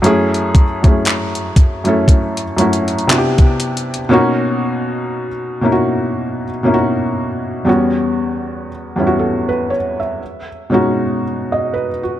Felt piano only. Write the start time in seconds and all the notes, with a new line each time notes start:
0.02 F#2 A3 C#4 E4
0.06 G#4
0.82 F#2 A3 C#4 E4
0.87 G#4
1.84 F#2 A3 C#4 E4
1.88 A4
2.57 F#2 A3 C#4 E4
2.61 F#4
3.07 C3 B3 D4 E4
3.12 F#4
3.18 G4
4.09 B2 A#3 C#4 D#4
4.13 F#4
5.61 B2 A#3 C#4 D#4
5.66 E4
5.72 F#4
6.63 B2 A#3 C#4 D#4
6.67 E4
6.74 F#4
7.65 E2 G3 B3 C#4
7.69 F#4
8.96 E2 G3 B3 C#4
9.00 E4
9.07 F#4
9.19 A4
9.49 B4
9.70 C#5
10.00 E5
10.70 B2 G#3 C#4 D#4
10.74 F#4
11.52 D#5
11.74 B4
12.03 F#4